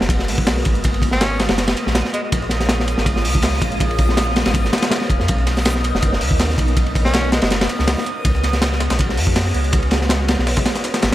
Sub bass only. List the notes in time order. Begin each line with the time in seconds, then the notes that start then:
0.01 F#1
0.29 B1
0.66 G#1
1.50 F#1
1.87 A#1
2.32 A#1
2.98 G#1
3.25 C#2
3.62 A#1
4.46 G#1
5.10 F1
5.20 F2
5.29 B1
5.94 F#1
6.21 D#2
6.58 B1
7.42 F#1
7.79 C#2
8.25 C#2
8.90 B1
9.17 F#2
9.54 C#2
10.38 B1
11.03 G#1